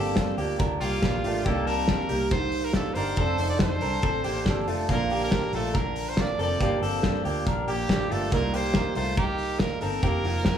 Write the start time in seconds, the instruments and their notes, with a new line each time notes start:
Already playing: fingered electric bass G1, steel-string acoustic guitar G2 D3 F3 A#3 D4 G4, clean electric guitar C4 A4, trumpet G4
0.16 fingered electric bass G2, steel-string acoustic guitar F3 A#3 D4, kick, snare, closed hi-hat
0.20 steel-string acoustic guitar G4
0.38 fingered electric bass D2, steel-string acoustic guitar F3 A#3 D4 G4, clean electric guitar A#3 G4, open hi-hat
0.59 fingered electric bass D2, clean electric guitar D4 A#4, kick, closed hi-hat
0.81 fingered electric bass C2, clean electric guitar A#3 G4, trumpet F4, open hi-hat
1.02 fingered electric bass A#1, steel-string acoustic guitar F3 A#3 D4 G4, kick, snare, closed hi-hat
1.24 fingered electric bass A1, steel-string acoustic guitar F3 A#3 D4 G4, clean electric guitar A3 F4, open hi-hat
1.45 fingered electric bass C2, steel-string acoustic guitar C3 G3 A#3 D#4 G4, clean electric guitar A#3 G4, trumpet A4, kick, closed hi-hat
1.67 clean electric guitar C4 A5, trumpet A#4, open hi-hat
1.88 steel-string acoustic guitar G3 A#3 D#4 G4, kick, snare
2.09 fingered electric bass C2, clean electric guitar A#3 G4, steel-string acoustic guitar A#3 D#4 G4, open hi-hat
2.31 clean electric guitar D#4 C5, trumpet C5, kick, closed hi-hat
2.52 open hi-hat
2.65 trumpet A#4
2.73 steel-string acoustic guitar G3 A#3 D#4 G4, trumpet A4, kick, snare, closed hi-hat
2.94 fingered electric bass G1, clean electric guitar D4 A#4, steel-string acoustic guitar D#4 G4, trumpet C5, open hi-hat
2.99 steel-string acoustic guitar A#3
3.16 fingered electric bass F1, steel-string acoustic guitar F3 C4 D4 A4, clean electric guitar C4 A4, kick, closed hi-hat
3.38 fingered electric bass F1, clean electric guitar D#4 C5, open hi-hat
3.50 trumpet D5
3.59 fingered electric bass F2, steel-string acoustic guitar F3 C4 D4, trumpet C5, kick, snare, closed hi-hat
3.64 steel-string acoustic guitar A4
3.81 fingered electric bass C2, steel-string acoustic guitar C4 D4 A4, clean electric guitar D4 A#4, open hi-hat
4.02 fingered electric bass A1, clean electric guitar C4 A4, kick, closed hi-hat
4.24 fingered electric bass A1, clean electric guitar A#3 G4, open hi-hat
4.46 fingered electric bass G1, steel-string acoustic guitar F3 C4 D4 A4, kick, snare, closed hi-hat
4.67 fingered electric bass F1, clean electric guitar A3 F4, steel-string acoustic guitar C4 D4 A4, open hi-hat
4.89 fingered electric bass A#1, steel-string acoustic guitar A#2 D3 F3 A#3 D4 A#4, clean electric guitar A#3 F4, trumpet A#4, kick, closed hi-hat
5.10 clean electric guitar A#3 G4, open hi-hat
5.24 trumpet A#4
5.31 steel-string acoustic guitar F3 A#3 D4, kick, snare, closed hi-hat
5.36 steel-string acoustic guitar A#4
5.52 fingered electric bass A#1, steel-string acoustic guitar F3 A#3 D4 A#4, clean electric guitar A3 F4, trumpet A4, open hi-hat
5.74 clean electric guitar D4 A#4, trumpet A#4, kick, closed hi-hat
5.96 open hi-hat
6.09 trumpet C5
6.17 steel-string acoustic guitar F3 A#3 D4 A#4, kick, snare, closed hi-hat
6.21 trumpet D5
6.39 fingered electric bass F1, steel-string acoustic guitar F3 A#3 D4 A#4, clean electric guitar C4 A4, trumpet D5, open hi-hat
6.60 fingered electric bass G1, steel-string acoustic guitar G2 D3 F3 A#3 D4 G4, clean electric guitar A#3 G4, kick, closed hi-hat
6.81 fingered electric bass G1, clean electric guitar C4 A4, open hi-hat
7.02 fingered electric bass G2, steel-string acoustic guitar F3 A#3 D4 G4, kick, snare, closed hi-hat
7.24 fingered electric bass D2, steel-string acoustic guitar F3 A#3 D4 G4, clean electric guitar A#3 G4, open hi-hat
7.47 fingered electric bass A#1, clean electric guitar D4 A#4, kick, closed hi-hat
7.68 fingered electric bass A#1, clean electric guitar A#3 G4, trumpet G4, open hi-hat
7.88 fingered electric bass A1, steel-string acoustic guitar F3 A#3 D4 G4, kick, snare, closed hi-hat
8.10 fingered electric bass G1, steel-string acoustic guitar F3 A#3 D4 G4, clean electric guitar A3 F4, trumpet A4, open hi-hat
8.32 fingered electric bass C2, steel-string acoustic guitar C3 G3 A#3 D#4 A#4, clean electric guitar A#3 F4, trumpet A#4, kick, closed hi-hat
8.53 clean electric guitar A#3 G4, trumpet C5, open hi-hat
8.73 steel-string acoustic guitar G3 A#3 D#4 A#4, kick, snare
8.95 fingered electric bass C2, clean electric guitar A3 F4, steel-string acoustic guitar A#3 D#4 A#4, trumpet C5, open hi-hat
9.17 clean electric guitar D#4 A#4, trumpet G4, kick, closed hi-hat
9.38 open hi-hat
9.59 steel-string acoustic guitar G3 A#3 D#4 A#4, trumpet A#4, kick, snare, closed hi-hat
9.81 fingered electric bass G1, steel-string acoustic guitar A#3 D#4 A#4, clean electric guitar C4 A4, trumpet A#4, open hi-hat
10.01 fingered electric bass F1, steel-string acoustic guitar F3 C4 D#4 A#4, clean electric guitar A#3 G4, kick, closed hi-hat
10.24 fingered electric bass F1, clean electric guitar A#3 F4, open hi-hat
10.43 fingered electric bass F2, steel-string acoustic guitar F3 C4 D#4 A#4, kick, snare, closed hi-hat